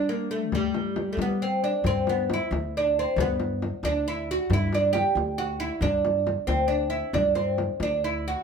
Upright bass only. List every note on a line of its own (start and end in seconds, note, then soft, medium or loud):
0.00 0.51 G3 medium
0.51 1.05 G2 medium
1.17 1.71 G3 medium
1.84 2.37 G2 medium
2.51 3.04 D2 medium
3.16 3.70 G2 medium
3.83 4.36 D2 medium
4.50 5.03 G2 medium
5.15 5.69 D2 medium
5.81 6.34 G2 medium
6.47 7.01 D2 medium
7.13 7.67 G2 medium
7.80 8.33 D2 medium